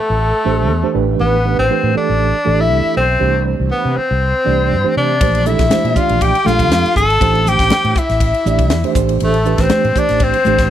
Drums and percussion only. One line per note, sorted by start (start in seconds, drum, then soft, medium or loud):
5.21 kick loud
5.21 ride medium
5.21 muted conga soft
5.35 ride medium
5.46 hi-hat pedal medium
5.59 kick medium
5.59 snare soft
5.59 ride medium
5.70 snare loud
5.70 ride medium
5.70 high conga medium
5.85 ride medium
5.96 kick medium
5.96 hi-hat pedal medium
5.96 muted conga soft
6.09 ride medium
6.21 kick medium
6.21 ride medium
6.21 muted conga soft
6.35 ride medium
6.46 snare soft
6.46 hi-hat pedal medium
6.46 muted conga soft
6.46 high conga medium
6.59 kick medium
6.59 ride medium
6.71 snare medium
6.71 ride medium
6.71 high conga medium
6.86 ride medium
6.96 kick medium
6.96 hi-hat pedal medium
7.10 ride medium
7.21 kick loud
7.21 ride medium
7.21 muted conga soft
7.35 ride medium
7.46 hi-hat pedal medium
7.46 low conga medium
7.59 kick medium
7.59 snare soft
7.59 ride medium
7.70 snare loud
7.70 ride medium
7.70 high conga medium
7.85 ride medium
7.96 kick medium
7.96 hi-hat pedal medium
7.96 muted conga soft
8.09 snare soft
8.09 ride medium
8.20 kick medium
8.20 ride medium
8.20 muted conga soft
8.34 ride medium
8.46 hi-hat pedal medium
8.46 muted conga soft
8.59 kick medium
8.59 ride medium
8.70 snare loud
8.70 ride medium
8.70 high conga medium
8.84 ride medium
8.95 kick loud
8.95 hi-hat pedal medium
9.09 ride medium
9.20 ride medium
9.20 muted conga soft
9.34 ride medium
9.45 hi-hat pedal medium
9.58 kick medium
9.58 snare soft
9.58 ride medium
9.70 snare loud
9.70 ride medium
9.70 high conga medium
9.85 ride medium
9.95 kick medium
9.95 hi-hat pedal medium
9.95 muted conga soft
10.09 snare soft
10.09 ride medium
10.20 kick medium
10.20 ride medium
10.20 muted conga soft
10.34 ride medium
10.45 hi-hat pedal medium
10.45 muted conga soft
10.45 high conga medium
10.58 kick medium
10.58 snare soft
10.58 ride medium